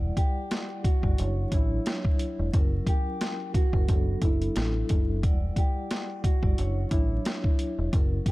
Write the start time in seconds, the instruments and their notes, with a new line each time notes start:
Already playing: vibraphone G3 E4 D5 F#5
0.17 clean electric guitar G4, kick, closed hi-hat
0.51 snare, closed hi-hat
0.84 clean electric guitar F#4, kick, closed hi-hat
1.01 fingered electric bass G1, vibraphone G3 E4 F#4 D5, kick
1.17 fingered electric bass F#1, vibraphone F#3 D4 E4 C#5, closed hi-hat
1.50 fingered electric bass A1, vibraphone F#3 D4 E4 C#5, clean electric guitar E4, kick, closed hi-hat
1.86 snare, closed hi-hat
2.05 kick
2.19 closed hi-hat
2.39 fingered electric bass E1
2.52 fingered electric bass F#1, vibraphone F#3 C#4 E4 A#4, kick, closed hi-hat
2.87 clean electric guitar G4, kick, closed hi-hat
3.21 snare, closed hi-hat
3.54 clean electric guitar F#4, kick, closed hi-hat
3.72 fingered electric bass F#1, vibraphone F#3 C#4 E4 A#4, kick
3.88 fingered electric bass F#1, vibraphone F#3 B3 D4 A4, kick, closed hi-hat
4.22 fingered electric bass F#1, vibraphone F#3 B3 D4 A4, clean electric guitar E4, kick, closed hi-hat
4.42 closed hi-hat
4.56 fingered electric bass A1, snare, closed hi-hat
4.89 fingered electric bass F#1, kick, closed hi-hat
5.22 fingered electric bass E1, vibraphone G3 E4 D5 F#5, kick, closed hi-hat
5.56 clean electric guitar G4, kick, closed hi-hat
5.91 snare, closed hi-hat
6.24 clean electric guitar F#4, kick, closed hi-hat
6.41 fingered electric bass G1, vibraphone G3 E4 F#4 D5, kick
6.56 fingered electric bass F#1, vibraphone F#3 D4 E4 C#5, closed hi-hat
6.89 fingered electric bass A1, vibraphone F#3 D4 E4 C#5, clean electric guitar E4, kick, closed hi-hat
7.25 snare, closed hi-hat
7.44 kick
7.59 closed hi-hat
7.79 fingered electric bass E1
7.92 fingered electric bass F#1, vibraphone F#3 C#4 E4 A#4, kick, closed hi-hat
8.26 clean electric guitar G4, kick, closed hi-hat